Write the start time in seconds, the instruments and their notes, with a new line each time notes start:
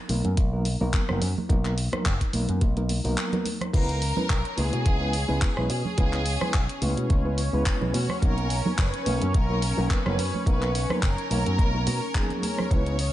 0.09 picked electric bass B1, reed electric piano F#3 A#3 B3 D#4 A#4, open hi-hat, high conga
0.25 picked electric bass F#2, closed hi-hat
0.37 picked electric bass B1, kick, closed hi-hat
0.52 reed electric piano F#3 A#3 B3 D#4 A#4
0.65 open hi-hat
0.81 picked electric bass B1, reed electric piano F#3 A#3 B3 D#4 A#4
0.93 kick, clap, closed hi-hat
1.08 picked electric bass F#1, reed electric piano F#3 A#3 B3 D#4 A#4, cross-stick, low conga
1.22 picked electric bass F#2, open hi-hat
1.38 high conga, low conga
1.49 picked electric bass B1, reed electric piano F#3 A#3 B3 D#4 A#4, kick, closed hi-hat
1.65 clap, closed hi-hat
1.78 open hi-hat
1.92 reed electric piano F#3 A#3 B3 D#4 A#4, muted picked electric bass stroke, cross-stick, closed hi-hat, low conga
2.05 picked electric bass F#1, kick, clap, closed hi-hat
2.21 kick, closed hi-hat
2.33 picked electric bass B1, reed electric piano F#3 A#3 B3 D#4 A#4, open hi-hat, high conga
2.49 picked electric bass F#2, closed hi-hat
2.61 picked electric bass B1, kick, closed hi-hat, high conga
2.76 reed electric piano F#3 A#3 B3 D#4 A#4, closed hi-hat
2.89 open hi-hat, high conga
3.04 picked electric bass B1, reed electric piano F#3 A#3 B3 D#4 A#4, open hi-hat
3.17 clap, closed hi-hat
3.32 reed electric piano F#3 A#3 B3 D#4 A#4, closed hi-hat, low conga
3.45 open hi-hat, high conga
3.61 cross-stick, closed hi-hat, low conga
3.73 picked electric bass C#2, reed electric piano G#3 B3 C#4 E4 B4, analog synth pad C#4 C#5, violin section A#4, kick, closed hi-hat, crash
3.89 closed hi-hat
4.02 open hi-hat
4.16 reed electric piano G#3 B3 C#4 E4 B4, muted picked electric bass stroke, low conga
4.29 picked electric bass B1, kick, clap, closed hi-hat
4.45 closed hi-hat
4.57 picked electric bass C#2, reed electric piano G#3 B3 C#4 E4 B4, violin section G#4, open hi-hat, high conga
4.73 picked electric bass B2, closed hi-hat
4.86 picked electric bass C#2, kick, closed hi-hat
5.01 reed electric piano G#3 B3 C#4 E4 B4
5.13 open hi-hat
5.28 picked electric bass C#2, reed electric piano G#3 B3 C#4 E4 B4
5.42 kick, clap, closed hi-hat
5.57 picked electric bass B1, reed electric piano G#3 B3 C#4 E4 B4, cross-stick, low conga
5.69 picked electric bass B2, violin section G#4, open hi-hat
5.85 high conga, low conga
5.97 picked electric bass C#2, reed electric piano G#3 B3 C#4 E4 B4, kick, closed hi-hat
6.13 clap, closed hi-hat
6.26 open hi-hat
6.40 reed electric piano G#3 B3 C#4 E4 B4, muted picked electric bass stroke, cross-stick, low conga
6.54 picked electric bass B1, kick, clap, closed hi-hat
6.69 closed hi-hat
6.81 picked electric bass C#2, reed electric piano G#3 B3 C#4 E4 B4, open hi-hat, high conga
6.97 picked electric bass B2, closed hi-hat
7.10 picked electric bass C#2, kick, closed hi-hat, high conga
7.25 reed electric piano G#3 B3 C#4 E4 B4
7.38 open hi-hat
7.53 picked electric bass C#2, reed electric piano G#3 B3 C#4 E4 B4
7.66 kick, clap, closed hi-hat
7.81 picked electric bass B1, reed electric piano G#3 B3 C#4 E4 B4, low conga
7.94 picked electric bass B2, violin section F#4, open hi-hat, high conga
8.09 cross-stick, low conga
8.22 picked electric bass B1, reed electric piano F#3 A#3 B3 D#4 A#4, violin section A#4, kick, closed hi-hat
8.38 closed hi-hat
8.50 open hi-hat
8.65 reed electric piano F#3 A#3 B3 D#4 A#4, muted picked electric bass stroke, low conga
8.78 picked electric bass F#1, violin section B4, kick, clap, closed hi-hat
8.94 closed hi-hat
9.06 picked electric bass B1, reed electric piano F#3 A#3 B3 D#4 A#4, open hi-hat, high conga
9.22 picked electric bass F#2, closed hi-hat
9.34 picked electric bass B1, violin section A#4, kick, closed hi-hat
9.49 reed electric piano F#3 A#3 B3 D#4 A#4
9.62 open hi-hat
9.77 picked electric bass B1, reed electric piano F#3 A#3 B3 D#4 A#4
9.90 violin section B4, kick, clap, closed hi-hat
10.05 picked electric bass F#1, reed electric piano F#3 A#3 B3 D#4 A#4, cross-stick, low conga
10.18 picked electric bass F#2, open hi-hat
10.34 high conga, low conga
10.46 picked electric bass B1, reed electric piano F#3 A#3 B3 D#4 A#4, violin section B4, kick, closed hi-hat
10.62 clap, closed hi-hat
10.75 open hi-hat
10.89 reed electric piano F#3 A#3 B3 D#4 A#4, muted picked electric bass stroke, cross-stick, low conga
11.03 picked electric bass F#1, violin section A#4, kick, clap, closed hi-hat
11.18 closed hi-hat
11.30 picked electric bass B1, reed electric piano F#3 A#3 B3 D#4 A#4, open hi-hat, high conga
11.46 picked electric bass F#2, closed hi-hat
11.59 picked electric bass B1, kick, closed hi-hat, high conga
11.74 reed electric piano F#3 A#3 B3 D#4 A#4
11.87 picked electric bass B2, open hi-hat, high conga
12.14 reed electric piano F#3 A#3 B3 D#4 G#4, kick, clap, closed hi-hat
12.30 closed hi-hat, low conga
12.43 violin section A#4, open hi-hat, high conga
12.58 cross-stick, low conga
12.71 picked electric bass C#2, reed electric piano G#3 B3 C#4 E4 B4, analog synth pad C#4 D#5, violin section C#5, kick, closed hi-hat
12.86 closed hi-hat
12.99 open hi-hat